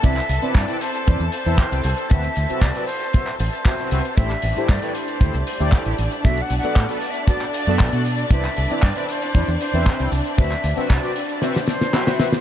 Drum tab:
HH |x-oxxooxx-o-xxox|x-oxxooxxxo-xxox|x-oxxooxx-o-xxox|x-oxxooxxxo-xxox|
SH |xxxxxxxxxxxxxxxx|xxxxxxxxxxxxxxxx|xxxxxxxxxxxxxxxx|xxxxxxxxxxxxxxxx|
CP |-x--x-------x---|----x----x--x---|-x--x-------x---|----x----x--x---|
SD |----------------|----------------|----------------|----------------|
BD |o---o---o---o---|o---o---o---o---|o---o---o---o---|o---o---o---o---|

HH |x-oxxooxx-o-xxox|xxoxxooxxxoxxxox|
SH |xxxxxxxxxxxxxxxx|xxxxxxxxxxxxxxxx|
CP |-x--x-------x---|-x--x-------x---|
SD |----------------|--------oooooooo|
BD |o---o---o---o---|o---o-----------|